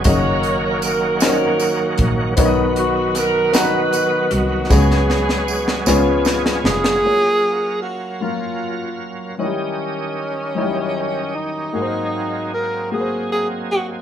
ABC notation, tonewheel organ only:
X:1
M:6/8
L:1/8
Q:3/8=51
K:F#
V:1 name="Tonewheel organ"
[D,F,A,CF]6 | [=D,^D,F,B,F]6 | [F,G,B,C=G^G]3 [E,G,B,CG]3 | [F,CAe]6 |
[D,CF=Gd]6 | [F,A,^B,G]6 |]